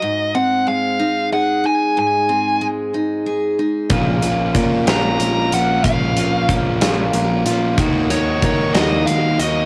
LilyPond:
<<
  \new Staff \with { instrumentName = "Lead electric guitar" } { \time 6/8 \key bes \minor \tempo 4. = 62 ees''8 ges''8 f''4 ges''8 aes''8 | aes''4 r2 | r4. bes''4 ges''8 | f''4 r2 |
r8 des''8 des''8 ees''8 f''8 ees''8 | }
  \new Staff \with { instrumentName = "Steel-string acoustic guitar" } { \time 6/8 \key bes \minor aes,8 c'8 aes8 ees'8 aes'8 ees'8 | aes,8 c'8 aes8 ees'8 aes'8 ees'8 | bes,8 des'8 bes4 bes'4 | bes,8 des'8 bes8 f'8 bes'8 f'8 |
ees8 ees'8 bes8 ges'8 bes'8 ges'8 | }
  \new Staff \with { instrumentName = "Overdriven electric guitar" } { \time 6/8 \key bes \minor r2. | r2. | <bes, f bes des' f'>8 <bes des' f'>8 <f bes des' f'>8 <bes, f bes des' f'>4 <bes des' f'>8 | <bes, f bes des' f'>8 <bes des' f'>8 <f bes des' f'>8 <bes, f bes des' f'>4 <bes des' f'>8 |
<ees bes ees' ges'>8 <bes ees' ges'>8 <ees bes ees' ges'>8 <ees bes ees' ges'>4 <bes ees' ges'>8 | }
  \new Staff \with { instrumentName = "Picked electric bass" } { \clef bass \time 6/8 \key bes \minor r2. | r2. | bes,,8 bes,,8 bes,8 bes,,8 bes,,8 bes,,8 | bes,,8 bes,,8 bes,,4 bes,,8 bes,,8 |
ees,8 ees,8 ees8 ees,8 ees,8 ees,8 | }
  \new DrumStaff \with { instrumentName = "Drums" } \drummode { \time 6/8 r4. r4. | r4. r4. | <hh bd>8 hh8 <hh bd>8 <hh sn>8 hh8 hh8 | <hh bd>8 hh8 <hh bd>8 <hh sn>8 hh8 hh8 |
<hh bd>8 hh8 <hh bd>8 <hh sn>8 hh8 hh8 | }
>>